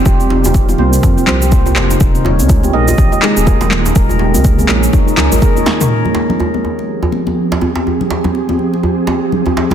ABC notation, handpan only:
X:1
M:4/4
L:1/16
Q:"Swing 16ths" 1/4=123
K:Fm
V:1 name="Handpan"
G z E G z F B, z C C z G B, z c E | z2 d D z G e z G e E A B, z B E | B z G B z A D z E E D B A d E B | z16 |
z16 |]